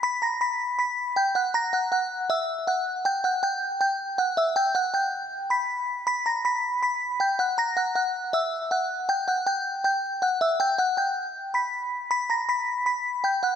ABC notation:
X:1
M:4/4
L:1/8
Q:1/4=159
K:Edor
V:1 name="Synth bell"
[bb'] [^a^a'] [bb']2 [bb']2 [gg'] [ff'] | [^a^a'] [ff'] [ff']2 [ee']2 [ff']2 | [gg'] [ff'] [gg']2 [gg']2 [ff'] [ee'] | [gg'] [ff'] [gg']3 [bb']3 |
[bb'] [^a^a'] [bb']2 [bb']2 [gg'] [ff'] | [^a^a'] [ff'] [ff']2 [ee']2 [ff']2 | [gg'] [ff'] [gg']2 [gg']2 [ff'] [ee'] | [gg'] [ff'] [gg']3 [bb']3 |
[bb'] [^a^a'] [bb']2 [bb']2 [gg'] [ff'] |]